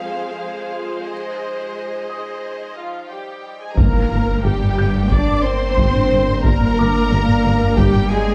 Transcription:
Already playing: cello section F2, synth drone F3 F4 C5, viola section G#3 G#4, violin section C5 F5, grand piano G5 G6
1.10 cello section G#2, synth drone D#4, violin section D#5
2.09 grand piano D#6
2.77 cello section F3, french horn section F3, viola section F4, violin section F4 F5
3.10 cello section G3, french horn section G3, viola section G4, violin section G4 G5
3.61 cello section G#3, french horn section G#3, viola section G#4, violin section G#4 G#5
3.77 detuned saw bass G1, tuba G1, double bass section G2, cello section A#3, synth drone A#3 D4 A#4, french horn section A#3, viola section A#4, violin section A#4 A#5, taiko, impact
3.95 double bass section G2
4.11 tuba G1, double bass section G2
4.43 tuba G1, double bass section G2, cello section G3, french horn section G3, viola section G4, violin section G4 G5
4.62 double bass section G2
4.78 tuba G1, double bass section G2, grand piano G6
4.95 double bass section G2
5.10 tuba G1, double bass section G2, cello section D4, french horn section D4, violin section D5 D6, viola section D5, taiko
5.28 double bass section G2
5.44 cello section C4, french horn section C4, violin section C5 C6, viola section C5
5.78 tuba G1, double bass section G2, taiko
5.96 double bass section G2
6.11 tuba G1, double bass section G2
6.28 double bass section G2
6.43 tuba G1, double bass section G2, cello section A#3, french horn section A#3, violin section A#4 A#5, viola section A#4, taiko
6.61 double bass section G2
6.78 tuba G1, double bass section G2, grand piano D6
7.10 tuba G1, double bass section G2
7.27 double bass section G2
7.44 tuba G1, double bass section G2
7.61 double bass section G2
7.77 tuba G1, double bass section G2, cello section G3, french horn section G3, violin section G4 G5, viola section G4, taiko
7.94 double bass section G2
8.10 french horn section G#3, cello section G#3, violin section G#4 G#5, viola section G#4

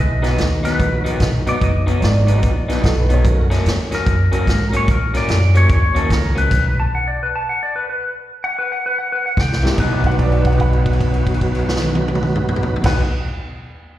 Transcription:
Already playing: upright bass B1
0.00 electric slide guitar D#5
0.22 clean electric guitar B2 F#3 B3 D#4, tonewheel organ F#3 B3 D#4 F#4 B4, snare, closed hi-hat
0.38 upright bass D#2, snare, closed hi-hat
0.63 clean electric guitar B2 F#3 B3 D#4, electric slide guitar B4, snare, closed hi-hat
0.79 upright bass A#1, tonewheel organ F#3 B3 D#4 F#4 B4, kick, closed hi-hat
1.02 clean electric guitar B2 F#3 B3 D#4, electric slide guitar A#4, closed hi-hat
1.20 upright bass B1, kick, snare, closed hi-hat
1.45 clean electric guitar B2 F#3 B3 D#4, tonewheel organ F#3 B3 D#4 F#4 B4, electric slide guitar D5, muted upright bass stroke, closed hi-hat
1.61 upright bass F#1, electric slide guitar D#5, kick, closed hi-hat
1.86 clean electric guitar B2 F#3 B3 D#4, closed hi-hat
2.00 upright bass G#1, upright piano C#5, snare, closed hi-hat
2.05 upright piano D5
2.27 clean electric guitar B2 F#3 B3 D#4, tonewheel organ F#3 B3 D#4 F#4 B4, closed hi-hat
2.43 upright bass A#1, kick, closed hi-hat
2.68 clean electric guitar B2 F#3 B3 D#4, tonewheel organ F#3 B3 D#4 F#4 B4, snare, closed hi-hat
2.84 upright bass B1, upright piano A4, kick, snare, closed hi-hat
3.00 upright piano B4
3.09 clean electric guitar B2 F#3 B3 D#4, upright piano A4, closed hi-hat
3.14 upright piano C#5
3.24 upright bass F#2, tonewheel organ F#3 A#3 C#4 F#4 A#4, kick, closed hi-hat
3.50 clean electric guitar F#2 F#3 A#3 C#4, snare, closed hi-hat
3.65 upright bass E2, snare, closed hi-hat
3.91 clean electric guitar F#2 F#3 A#3 C#4, electric slide guitar A#4, snare, closed hi-hat
4.06 upright bass F#2, kick, closed hi-hat
4.31 clean electric guitar F#2 F#3 A#3 C#4, tonewheel organ F#3 A#3 C#4 F#4 A#4, electric slide guitar A#4, muted upright bass stroke, closed hi-hat
4.47 upright bass G#2, kick, snare, closed hi-hat
4.73 clean electric guitar F#2 F#3 A#3 C#4, closed hi-hat
4.77 electric slide guitar C#5
4.88 upright bass A#2, electric slide guitar A#4, kick, closed hi-hat
5.14 clean electric guitar F#2 F#3 A#3 C#4, electric slide guitar D5, snare, closed hi-hat
5.28 upright bass F#2, snare, closed hi-hat
5.54 clean electric guitar F#2 F#3 A#3 C#4, electric slide guitar C#5, closed hi-hat
5.69 upright bass D#2, electric slide guitar C#5, kick, closed hi-hat
5.94 clean electric guitar F#2 F#3 A#3 C#4, electric slide guitar A4, closed hi-hat
6.10 upright bass C#2, electric slide guitar A#4, kick, snare, closed hi-hat
6.35 clean electric guitar F#2 F#3 A#3 C#4, electric slide guitar B4, closed hi-hat
6.51 upright bass B1, kick, closed hi-hat, crash
6.80 electric slide guitar A5
6.95 electric slide guitar F#5
7.08 electric slide guitar D5
7.23 electric slide guitar B4
7.36 electric slide guitar A5
7.49 electric slide guitar F#5
7.63 electric slide guitar D5
7.76 electric slide guitar B4
7.90 electric slide guitar B4
8.44 electric slide guitar F#5
8.59 electric slide guitar B4
8.72 electric slide guitar F#5
8.86 electric slide guitar B4
8.98 electric slide guitar F#5
9.12 electric slide guitar B4
9.26 electric slide guitar F#5
9.37 upright bass C2, electric slide guitar G5, kick, snare
9.53 snare
9.63 clean electric guitar C3 G3 A#3 E4, snare
9.71 tonewheel organ F#3 B3
9.77 upright bass B1, clean electric guitar B2 F#3 B3, tonewheel organ D#4 F#4, electric slide guitar B4, kick, crash
9.81 clean electric guitar D#4, tonewheel organ B4
10.04 upright piano F#5, kick, crash
10.11 crash
10.16 upright piano C#5, kick, crash
10.20 upright piano D5
10.32 crash
10.45 upright piano F#5, kick, crash
10.52 crash
10.60 upright piano F#5 B5, kick, crash
10.73 crash
10.86 kick, crash
10.93 crash
11.00 kick, crash
11.14 crash
11.27 kick, crash
11.34 crash
11.41 kick, crash
11.55 crash
11.69 snare
11.76 snare
11.82 high tom
11.95 high tom
12.08 high tom
12.15 mid tom
12.22 mid tom
12.35 mid tom
12.49 mid tom
12.56 mid tom
12.63 floor tom
12.76 tonewheel organ F#3, floor tom
12.81 upright bass B1, clean electric guitar B2 F#3, tonewheel organ B3 D#4, kick, crash
12.85 clean electric guitar B3 D#4, tonewheel organ F#4, electric slide guitar B4, upright piano F#5 B5, snare
12.90 tonewheel organ B4

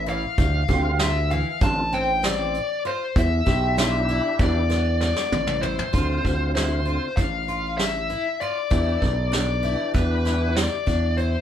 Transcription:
Already playing: fingered electric bass A1
0.06 twelve-string acoustic guitar E3, lead electric guitar F5, closed hi-hat
0.38 fingered electric bass D2, kick, closed hi-hat
0.68 fingered electric bass D2, tonewheel organ D3 C4 F4, twelve-string acoustic guitar G4, kick, closed hi-hat
0.99 twelve-string acoustic guitar F4, lead electric guitar E5, snare, closed hi-hat
1.30 twelve-string acoustic guitar E3, lead electric guitar F5, closed hi-hat
1.61 fingered electric bass A1, tonewheel organ D3 C4 F4, twelve-string acoustic guitar D4, lead electric guitar A5, kick, closed hi-hat
1.92 twelve-string acoustic guitar C4, lead electric guitar G5, closed hi-hat
2.23 twelve-string acoustic guitar C4, lead electric guitar D5, snare, closed hi-hat
2.54 closed hi-hat
2.85 twelve-string acoustic guitar F4, lead electric guitar C5, closed hi-hat
3.16 fingered electric bass E2, lead electric guitar E5, kick, closed hi-hat
3.46 fingered electric bass B1, twelve-string acoustic guitar G4, kick, snare, closed hi-hat
3.77 tonewheel organ D4 E4 G4, twelve-string acoustic guitar F4, lead electric guitar E5, snare, closed hi-hat
4.09 twelve-string acoustic guitar E4, closed hi-hat
4.39 fingered electric bass E2, tonewheel organ E3 D4 G4, twelve-string acoustic guitar D4, lead electric guitar D5, kick, closed hi-hat
4.70 twelve-string acoustic guitar B3, snare, closed hi-hat
5.01 twelve-string acoustic guitar B3, lead electric guitar D5, snare
5.16 snare
5.32 fingered electric bass A1, high tom
5.47 mid tom
5.62 twelve-string acoustic guitar E4, lead electric guitar C5, mid tom
5.79 floor tom
5.93 fingered electric bass D2, tonewheel organ D3 C4 F4, twelve-string acoustic guitar F4, kick, closed hi-hat
6.24 fingered electric bass D2, kick, closed hi-hat
6.55 twelve-string acoustic guitar E4, lead electric guitar C5, snare, closed hi-hat
6.85 tonewheel organ D3 C4 F4, twelve-string acoustic guitar F4, closed hi-hat
7.16 fingered electric bass A1, twelve-string acoustic guitar D4, lead electric guitar F5, kick, closed hi-hat
7.48 twelve-string acoustic guitar F4, closed hi-hat
7.78 lead electric guitar E5, snare, closed hi-hat
8.10 twelve-string acoustic guitar E4, closed hi-hat
8.40 twelve-string acoustic guitar F4, lead electric guitar D5, closed hi-hat
8.71 fingered electric bass E2, tonewheel organ E3 D4 G4, twelve-string acoustic guitar E4, kick, closed hi-hat
9.02 fingered electric bass B1, kick, closed hi-hat
9.32 twelve-string acoustic guitar D4, lead electric guitar D5, snare, closed hi-hat
9.63 tonewheel organ E3 D4 G4, twelve-string acoustic guitar E4, closed hi-hat
9.94 fingered electric bass E2, twelve-string acoustic guitar D4, lead electric guitar B4, kick, closed hi-hat
10.25 twelve-string acoustic guitar E4, snare, closed hi-hat
10.56 lead electric guitar D5, snare, closed hi-hat
10.86 fingered electric bass E2, twelve-string acoustic guitar D4, kick, closed hi-hat
11.18 twelve-string acoustic guitar E4, lead electric guitar C5, closed hi-hat

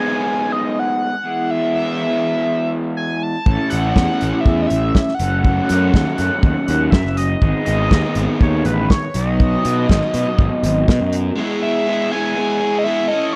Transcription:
Already playing: overdriven electric guitar G#2 D#3 G#3 B3 D#4 G#4, analog synth lead G#5
0.52 analog synth lead D#5
0.79 analog synth lead F#5
1.23 overdriven electric guitar E3 G#3 B3 E4 G#4
1.51 analog synth lead E5
1.75 analog synth lead E5
2.97 analog synth lead G#5
3.23 analog synth lead A5
3.46 picked electric bass A1, overdriven electric guitar A2 E3 A3 C#4, kick
3.50 overdriven electric guitar E4 A4
3.70 picked electric bass A1, analog synth lead F#5, closed hi-hat
3.96 picked electric bass E2, kick, snare
4.21 picked electric bass A1, closed hi-hat
4.41 analog synth lead E5
4.46 picked electric bass E2, kick
4.62 analog synth lead D#5
4.67 analog synth lead E5, closed hi-hat
4.71 picked electric bass A1
4.95 kick, snare
5.08 snare
5.14 analog synth lead F#5
5.19 picked electric bass F#1, overdriven electric guitar F#3 A3 C#4 A4, closed hi-hat
5.24 overdriven electric guitar F#4
5.44 kick
5.69 picked electric bass F#2, closed hi-hat
5.94 picked electric bass D#2, kick, snare
6.18 picked electric bass F#2, closed hi-hat
6.43 picked electric bass D#2, kick
6.68 picked electric bass D#2, closed hi-hat
6.91 picked electric bass F#2, analog synth lead E5, kick, snare
7.05 picked electric bass F#1, snare
7.17 analog synth lead D#5, closed hi-hat
7.41 picked electric bass G#1, overdriven electric guitar G#2 D#3 G#3 B3 D#4 G#4, kick
7.66 picked electric bass G#1, analog synth lead D#5, closed hi-hat
7.91 picked electric bass D#2, kick, snare
8.15 picked electric bass G#1, closed hi-hat
8.41 picked electric bass D#2, analog synth lead C#5, kick
8.65 picked electric bass A1, analog synth lead B4, closed hi-hat
8.90 analog synth lead C#5, kick, snare
9.14 picked electric bass B1, overdriven electric guitar B2 D#3 F#3 B3 D#4 F#4, analog synth lead D#5, closed hi-hat
9.18 overdriven electric guitar F#3
9.40 kick
9.65 picked electric bass B2, closed hi-hat
9.89 picked electric bass G#1, kick, snare
10.14 picked electric bass B2, closed hi-hat
10.39 picked electric bass G#1, kick
10.63 picked electric bass G#1, closed hi-hat
10.88 picked electric bass B2, kick, snare
11.00 picked electric bass F#2
11.13 closed hi-hat
11.35 overdriven electric guitar G#3 B3 E4 G#4, tonewheel organ G#4 E5 C#6
11.62 overdriven electric guitar B3 E4 G#4, analog synth lead E5
11.87 overdriven electric guitar G#3 B3 E4 G#4
12.12 overdriven electric guitar G#3 B3 E4 G#4, analog synth lead G#5
12.35 overdriven electric guitar G#3 B3 E4 G#4, analog synth lead G#5
12.60 overdriven electric guitar B3 E4 G#4
12.79 analog synth lead D#5
12.84 overdriven electric guitar G#3 B3 E4 G#4, analog synth lead E5
13.08 overdriven electric guitar C#4 E4 A4, tonewheel organ A4 G#5, analog synth lead D#5
13.33 analog synth lead C#5

